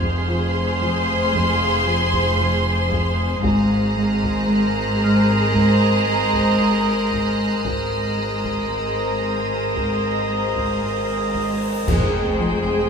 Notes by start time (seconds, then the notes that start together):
Already playing: F1 F2 G#4 C5 D#5 F5 C6 F6
0.03 taiko
0.28 F3
0.81 F3
1.34 F2, taiko
1.86 F3
2.13 taiko
2.38 F2
2.90 F2, taiko
3.43 G#1 G#2 G#4 A#4 C5 D#5 A#5 D#6 F6 F#6, taiko
3.95 G#3
4.23 taiko
4.48 G#3
5.02 G#3 F6
5.53 G#2, taiko
6.07 G#3
6.34 taiko
6.59 G#2
7.12 G#2, taiko
7.64 G#1 G#2 G#4 A#4 C5 D#5 A#5, taiko, cymbal swell
8.17 G#3
8.45 taiko
8.56 E6
8.70 G#3
9.22 G#3
9.76 G#2, taiko
10.28 G#3
10.55 taiko
10.82 G#2
11.34 G#2, taiko
11.86 F1 F2 G#3 G#4 C5 G5, concert bass drum, taiko, crash, sub drop
12.40 F3